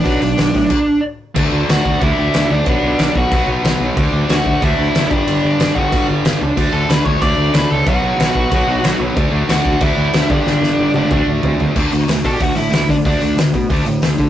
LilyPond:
<<
  \new Staff \with { instrumentName = "Lead electric guitar" } { \time 4/4 \key d \major \tempo 4 = 185 <d' d''>2. r4 | r4 <fis' fis''>4 <e' e''>4. <d' d''>8~ | <d' d''>4. <fis' fis''>4 r4. | r4 <fis' fis''>4 <e' e''>4. <d' d''>8~ |
<d' d''>4. <fis' fis''>4 r4. | r8 <a' a''>8 <b' b''>8 <cis'' cis'''>8 <d'' d'''>4 <b' b''>8 <a' a''>8 | <fis' fis''>2.~ <fis' fis''>8 r8 | r4 <fis' fis''>4 <e' e''>4. <d' d''>8~ |
<d' d''>4. <d' d''>4 r4. | r4. <a' a''>16 <g' g''>16 <fis' fis''>8 <e' e''>4 <d' d''>8 | <d' d''>4 r2. | }
  \new Staff \with { instrumentName = "Distorted electric guitar" } { \clef bass \time 4/4 \key d \major <b, fis b>8 <b, fis>8 <b, fis>8 <b, fis>8 r2 | <d a d'>2 <d a d'>2 | <b, fis b>2 <b, fis b>2 | <d a d'>2 <d a d'>4. <g, d g>8~ |
<g, d g>4. <g, d g>2 r8 | <d a d'>2 <d a d'>2 | <b, fis b>2 <b, fis b>2 | <d a d'>2 <d a d'>4. <g, d g>8~ |
<g, d g>4. <g, d g>8 <d a d'>2 | <d a d'>8 <d a>8 <d a>8 <d a d'>8 <d a>8 <d a>8 <d a>8 <d a>8 | <d a d'>8 <d a>8 <d a>8 <d a>8 <d a d'>8 <d a>8 <d a>8 <d a>8 | }
  \new Staff \with { instrumentName = "Picked electric bass" } { \clef bass \time 4/4 \key d \major b,,8 b,,8 b,,8 a,8 r2 | d,8 d,8 d,8 d,8 d,8 d,8 d,8 d,8 | b,,8 b,,8 b,,8 b,,8 b,,8 b,,8 b,,8 b,,8 | d,8 d,8 d,8 d,8 d,8 d,8 fis,,8 g,,8 |
g,,8 g,,8 g,,8 g,,8 g,,8 g,,8 g,,8 cis,8 | d,8 d,8 d,8 d,8 d,8 d,8 d,8 cis,8 | b,,8 b,,8 b,,8 b,,8 b,,8 b,,8 b,,8 b,,8 | d,8 d,8 d,8 d,8 d,8 d,8 d,8 g,,8 |
g,,8 g,,8 g,,8 g,,8 d,8 d,8 d,8 d,8 | d,8 d,8 d,8 b,8 d,8 a,8 d,8 d8 | d,8 d,8 d,8 b,8 d,8 a,8 d,8 d8 | }
  \new DrumStaff \with { instrumentName = "Drums" } \drummode { \time 4/4 <hho bd>8 hho8 <hho sn>8 <hho bd>8 <cymc bd>4 r4 | <cymc bd>4 <cymc sn>8 bd8 <cymc bd>4 <cymc sn>4 | <cymc bd>4 <cymc sn>8 bd8 <cymc bd>4 <cymc sn>4 | <cymc bd>4 <cymc sn>8 bd8 <cymc bd>4 <cymc sn>8 bd8 |
cymc4 <cymc sn>8 bd8 <cymc bd>4 <cymc sn>4 | <cymc bd>4 <cymc sn>8 bd8 <cymc bd>4 <cymc sn>4 | <cymc bd>4 <cymc sn>8 bd8 <cymc bd>4 <cymc sn>4 | <cymc bd>4 <cymc sn>8 bd8 <cymc bd>4 <cymc sn>8 bd8 |
sn8 sn8 r8 tommh8 <bd toml>4 tomfh8 tomfh8 | <cymc bd>8 hho8 <hho sn>8 <hho bd>8 <hho bd>8 hho8 <hho sn>8 <hho bd>8 | <hho bd>8 hho8 <hho sn>8 <hho bd>8 <hho bd>8 hho8 <hho sn>8 <hho bd>8 | }
>>